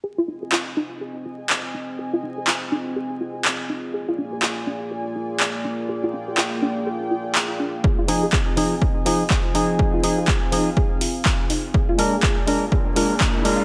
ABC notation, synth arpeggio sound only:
X:1
M:4/4
L:1/16
Q:"Swing 16ths" 1/4=123
K:Fdor
V:1 name="Synth arpeggio sound"
A F E A F z E z A z F z3 E z | A F E A F z E z A z F z3 E z | A F D A F z D z A z F z3 D z | A F D A F z D z A z F z3 D z |
A F E A A z E z A z F z3 E z | A F E A A z E z A z F z3 E z | A F D A A z D z A z F z3 D z |]